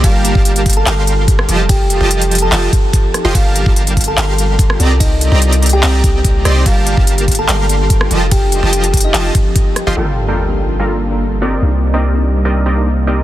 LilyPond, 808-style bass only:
\new Staff \with { instrumentName = "808-style bass" } { \clef bass \time 4/4 \key g \minor \tempo 4 = 145 g,,8. g,,4~ g,,16 g,,4. f,,8~ | f,,8. f,,4~ f,,16 f,,8 r4 r16 f,,16 | g,,8. g,,4~ g,,16 g,,4. c,8~ | c,8. c,4~ c,16 c,8 c,4 c,8 |
g,,8. g,,4~ g,,16 g,,4. f,,8~ | f,,8. f,,4~ f,,16 f,,8 r4 r16 f,,16 | g,,1 | c,1 | }